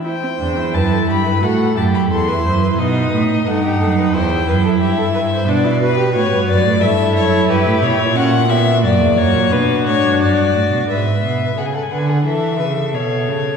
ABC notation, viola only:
X:1
M:4/4
L:1/16
Q:1/4=88
K:Em
V:1 name="Viola"
E C D E4- E F2 E6 | ^D4 D4 E8 | D E F G F4 E8 | ^C2 B,2 ^A,4 D8 |
z16 |]